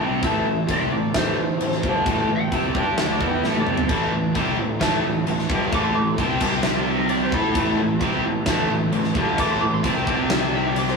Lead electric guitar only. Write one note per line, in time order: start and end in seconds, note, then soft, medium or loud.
0.24 0.68 E5 medium
0.71 0.92 E5 loud
0.92 1.14 D5 medium
1.16 2.04 C5 loud
2.36 2.51 G5 loud
2.53 2.68 E5 medium
2.68 2.83 D5 medium
2.82 2.97 G5 medium
2.97 3.12 E5 medium
3.12 3.27 D5 medium
3.27 3.42 G5 medium
3.42 3.57 E5 medium
3.60 3.74 D5 medium
3.73 5.07 A4 medium
5.74 5.83 D6 medium
5.83 5.95 C6 medium
5.95 6.09 D6 medium
6.09 6.19 C6 medium
6.21 6.29 A5 medium
6.30 6.41 G5 medium
6.42 6.53 A5 medium
6.53 6.64 G5 medium
6.64 6.76 E5 medium
6.76 6.88 D5 medium
6.88 6.97 E5 medium
6.97 7.09 D#5 medium
7.10 7.21 D5 medium
7.23 7.34 C5 medium
7.33 7.77 E4 loud
9.39 9.50 D6 loud
9.51 9.60 C6 medium
9.60 9.72 D6 medium
9.74 9.85 C6 medium
9.86 9.97 A5 loud
9.97 10.07 G5 medium
10.07 10.19 A5 medium
10.19 10.30 G5 loud
10.31 10.42 E5 medium
10.42 10.53 D5 medium
10.55 10.67 E5 medium
10.67 10.77 D5 medium
10.78 10.88 D5 medium
10.89 10.96 C5 medium